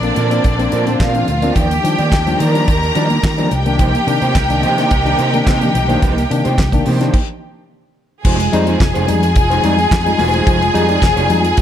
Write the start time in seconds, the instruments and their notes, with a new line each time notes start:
Already playing: fingered electric bass A#1, string section D3 A#3 C4 D4 D5
0.03 tine electric piano A#3 C4 D4, muted clean electric guitar stroke, closed hi-hat, high conga
0.16 tine electric piano A#2 F3, fingered electric bass A#2, clean electric guitar C4 F4 A#4 D5, closed hi-hat, muted conga, low conga
0.31 tine electric piano A#3 C4 D4, clean electric guitar C4 F4 A#4 D5, closed hi-hat
0.44 fingered electric bass A#1, kick, closed hi-hat
0.59 tine electric piano A#3 C4 D4, muted clean electric guitar stroke, closed hi-hat
0.71 tine electric piano A#2 F3, fingered electric bass A#2, clean electric guitar C4 F4 A#4 D5, closed hi-hat
0.87 tine electric piano A#3 C4 D4, muted clean electric guitar stroke, closed hi-hat, high conga
0.99 fingered electric bass A#2, clean electric guitar C4 F4 A#4 D5, string section F4 F5, kick, snare, clap
1.14 tine electric piano A#3 C4 D4, muted clean electric guitar stroke, closed hi-hat, low conga
1.27 fingered electric bass D2, tine electric piano A#2 F3, muted clean electric guitar stroke, closed hi-hat, high conga
1.42 tine electric piano A#3 C4 D4, clean electric guitar C4 F4 A#4 D5, closed hi-hat
1.55 fingered electric bass D#2, string section D#3 D4 G4 G5, tine electric piano D#3, clean electric guitar A#3 D#4 G4 D5, kick, closed hi-hat, muted conga, low conga
1.70 tine electric piano G3 D4, muted clean electric guitar stroke, closed hi-hat
1.83 fingered electric bass D#3, tine electric piano F3 G3 D4, muted clean electric guitar stroke, closed hi-hat, muted conga
1.98 fingered electric bass D#3, clean electric guitar A#3 D#4 G4 D5, closed hi-hat, high conga
2.11 fingered electric bass D#2, muted clean electric guitar stroke, kick, snare, clap, muted conga
2.26 tine electric piano F3 G3 D4, muted clean electric guitar stroke, closed hi-hat, high conga
2.39 tine electric piano D#3, fingered electric bass D#3, clean electric guitar A#3 D#4 G4 D5, string section A#4 A#5, closed hi-hat, low conga
2.54 tine electric piano F3 G3 D4, clean electric guitar A#3 D#4 G4 D5, closed hi-hat
2.68 fingered electric bass D#2, tine electric piano D#3, kick, closed hi-hat
2.82 muted clean electric guitar stroke, closed hi-hat
2.95 fingered electric bass D#3, tine electric piano F3 G3 D4, clean electric guitar A#3 D#4 G4 D#5, closed hi-hat, muted conga
3.10 tine electric piano G3 D4, muted clean electric guitar stroke, closed hi-hat, high conga
3.23 fingered electric bass D#3, muted clean electric guitar stroke, kick, snare, clap
3.38 tine electric piano F3 G3 D4, clean electric guitar A#3 D#4 G4 D5, closed hi-hat, low conga
3.51 fingered electric bass C2, string section C3 A#3 D#4 G4 G5, tine electric piano C3, muted clean electric guitar stroke, closed hi-hat, muted conga, high conga
3.66 tine electric piano D#3 A#3 D4, muted clean electric guitar stroke, closed hi-hat
3.79 tine electric piano C3, clean electric guitar A#3 D#4 G4 C5, kick, closed hi-hat, muted conga, low conga
3.94 tine electric piano A#3 D4, muted clean electric guitar stroke, closed hi-hat
4.06 fingered electric bass C3, tine electric piano D#3 A#3 D4, muted clean electric guitar stroke, closed hi-hat
4.22 fingered electric bass C3, clean electric guitar A#3 D#4 G4 C5, closed hi-hat, high conga
4.35 fingered electric bass C2, muted clean electric guitar stroke, kick, snare, clap
4.49 tine electric piano D#3 A#3 D4, muted clean electric guitar stroke, closed hi-hat, high conga
4.62 fingered electric bass C3, tine electric piano C3, clean electric guitar A#3 D#4 G4 C5, closed hi-hat, low conga
4.77 tine electric piano D#3 A#3 D4, clean electric guitar A#3 D#4 G4 C5, snare, closed hi-hat
4.91 fingered electric bass C2, kick, closed hi-hat
5.05 tine electric piano D#3 A#3 D4, muted clean electric guitar stroke, closed hi-hat
5.17 fingered electric bass C3, tine electric piano C3, clean electric guitar A#3 D#4 G4 C5, closed hi-hat, muted conga
5.33 tine electric piano D#3 A#3 D4, muted clean electric guitar stroke, closed hi-hat, high conga
5.46 fingered electric bass C3, clean electric guitar A#3 D#4 G4 C5, kick, snare, clap
5.61 tine electric piano D#3 A#3 D4, muted clean electric guitar stroke, closed hi-hat, low conga
5.74 fingered electric bass B1, tine electric piano C3, muted clean electric guitar stroke, closed hi-hat, muted conga, high conga
5.88 tine electric piano D#3 A#3 D4, clean electric guitar A#3 D#4 G4 C5, closed hi-hat
6.02 fingered electric bass C2, tine electric piano C3, clean electric guitar A#3 D#4 G4 C5, kick, closed hi-hat, muted conga, low conga
6.16 tine electric piano A#3 D4, muted clean electric guitar stroke, closed hi-hat
6.29 fingered electric bass C3, tine electric piano D#3 A#3 D4, muted clean electric guitar stroke, closed hi-hat, muted conga
6.45 fingered electric bass C3, clean electric guitar A#3 D#4 G4 C5, closed hi-hat, high conga
6.57 fingered electric bass C2, muted clean electric guitar stroke, kick, snare, clap, muted conga
6.72 tine electric piano D#3 A#3 D4, muted clean electric guitar stroke, kick, closed hi-hat, high conga
6.85 tine electric piano C3, fingered electric bass C3, clean electric guitar A#3 D#4 G4 C5, open hi-hat, low conga
7.01 tine electric piano D#3 A#3 D4, clean electric guitar A#3 D#4 G4 C5, snare, closed hi-hat
7.14 kick, crash
8.24 fingered electric bass F1, string section F3 D#4 F4 G#4 G#5, tine electric piano F3, clean electric guitar G#3 D#4 G4 C5, kick, crash, muted conga, low conga
8.39 muted clean electric guitar stroke, closed hi-hat
8.52 fingered electric bass F2, tine electric piano G3 G#3 D#4, clean electric guitar G#3 D#4 G4 C5, closed hi-hat, muted conga
8.67 tine electric piano G#3 D#4, clean electric guitar G#3 D#4 G4 C5, closed hi-hat, high conga
8.80 fingered electric bass F1, tine electric piano F3, muted clean electric guitar stroke, kick, snare, clap
8.94 fingered electric bass F1, clean electric guitar G#3 D#4 G4 C5, closed hi-hat, high conga
9.07 fingered electric bass F2, tine electric piano G3 G#3 D#4, muted clean electric guitar stroke, closed hi-hat, muted conga, low conga
9.23 tine electric piano G#3 D#4, muted clean electric guitar stroke, closed hi-hat
9.36 fingered electric bass F1, tine electric piano G#3 D#4, muted clean electric guitar stroke, kick, closed hi-hat
9.50 tine electric piano F3, clean electric guitar G#3 D#4 G4 C5, closed hi-hat
9.63 fingered electric bass F2, tine electric piano G3 G#3 D#4, clean electric guitar G#3 D#4 G4 D5, closed hi-hat, muted conga
9.78 muted clean electric guitar stroke, closed hi-hat, high conga
9.91 fingered electric bass F2, muted clean electric guitar stroke, kick, snare, clap, muted conga
10.06 tine electric piano G3 G#3 D#4, muted clean electric guitar stroke, closed hi-hat, high conga, low conga
10.19 fingered electric bass E1, clean electric guitar G#3 D#4 G4 C5, open hi-hat, muted conga, high conga
10.34 tine electric piano F3, clean electric guitar G#3 D#4 G4 C5, closed hi-hat
10.46 fingered electric bass F1, tine electric piano F3, clean electric guitar G#3 D#4 G4 C5, kick, closed hi-hat, muted conga, low conga
10.61 muted clean electric guitar stroke, closed hi-hat
10.74 fingered electric bass F2, tine electric piano G3 G#3 D#4, clean electric guitar G#3 D#4 G4 D5, closed hi-hat, muted conga
10.89 tine electric piano G#3 D#4, clean electric guitar G#3 D#4 G4 D5, closed hi-hat, high conga
11.02 fingered electric bass F1, tine electric piano F3, muted clean electric guitar stroke, kick, snare, clap, muted conga
11.16 fingered electric bass F1, clean electric guitar G#3 D#4 G4 D5, closed hi-hat, high conga
11.29 fingered electric bass F2, tine electric piano G3 G#3 D#4, muted clean electric guitar stroke, closed hi-hat, muted conga, low conga
11.44 tine electric piano G#3 D#4, muted clean electric guitar stroke, closed hi-hat
11.57 fingered electric bass F1, muted clean electric guitar stroke, kick, closed hi-hat, muted conga